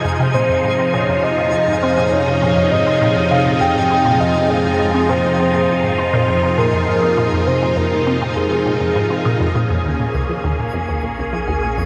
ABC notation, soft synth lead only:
X:1
M:4/4
L:1/8
Q:1/4=101
K:Fm
V:1 name="Soft synth lead"
z c2 d e2 c d- | d e2 f g2 e A- | A c3 c2 B B- | B c B2 A3 z |
[K:Bbm] z8 |]